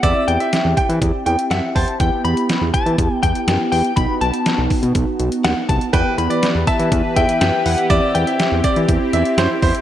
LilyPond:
<<
  \new Staff \with { instrumentName = "Clean electric guitar" } { \time 4/4 \key e \minor \tempo 4 = 122 e''8 g''4 r4. fis''8 a''8 | g''8 b''4 a''4 g''4 g''8 | b''8 a''4 r4. fis''8 a''8 | g''8 b''4 a''4 g''8 g''8 fis''8 |
e''8 g''4 r2 r8 | }
  \new Staff \with { instrumentName = "Grand piano" } { \time 4/4 \key e \minor d''8 r16 e''8 r16 g''16 r8. g''8 e''16 r16 c''16 r16 | r1 | r1 | b'8 r16 d''8 r16 e''16 r8. e''8 r4 |
d''8 r16 e''8 r16 d''16 r8. e''8 c''16 r16 c''16 r16 | }
  \new Staff \with { instrumentName = "Analog polysynth" } { \time 4/4 \key e \minor <c' e' g'>1 | <b e' g'>1 | <b dis' fis'>1 | <e' g'>1 |
<c' e' g'>1 | }
  \new Staff \with { instrumentName = "Analog synth pad" } { \time 4/4 \key e \minor << { r1 | r1 | r1 | <e e' b'>1 |
c'1 | } \\ { r1 | r1 | r1 | g'1~ |
g'1 | } >> }
  \new Staff \with { instrumentName = "Analog synth bass" } { \clef bass \time 4/4 \key e \minor e,16 r16 e,16 r8 e,16 r16 e16 e,16 r16 e,16 r16 fis,16 r16 e,16 r16 | e,16 r16 e,16 r8 e,16 r16 e16 e,16 r16 e,16 r16 fis,16 r16 e,16 r16 | b,,16 r16 b,,16 r8 b,,16 r16 b,16 b,,16 r16 b,,16 r16 dis,16 r16 c,16 r16 | e,16 r16 e,16 r8 e,16 r16 e16 e,16 r16 e,16 r16 fis,16 r16 e,16 r16 |
e,16 r16 e,16 r8 e,16 r16 e16 e,16 r16 e,16 r16 fis,16 r16 e,16 r16 | }
  \new DrumStaff \with { instrumentName = "Drums" } \drummode { \time 4/4 <hh bd>8 hh16 hh16 <hh sn>8 <hh bd>16 hh16 <hh bd>8 hh16 hh16 <hh sn>8 <hho bd>16 hh16 | <hh bd>8 hh16 hh16 <hh sn>8 <hh bd>16 hh16 <hh bd>8 <hh bd>16 hh16 <hh sn>8 hho16 hh16 | <hh bd>8 hh16 hh16 <hh sn>8 <hho bd>16 hh16 <hh bd>8 hh16 hh16 <hh sn>8 <hh bd>16 hh16 | <hh bd>8 hh16 hh16 <hh sn>8 <hh bd>16 hh16 <hh bd>8 <hh bd>16 hh16 <hh sn>8 hho16 hh16 |
<hh bd>8 hh16 hh16 <hh sn>8 <hh bd>16 hh16 <hh bd>8 hh16 hh16 <hh sn>8 <hho bd>16 hh16 | }
>>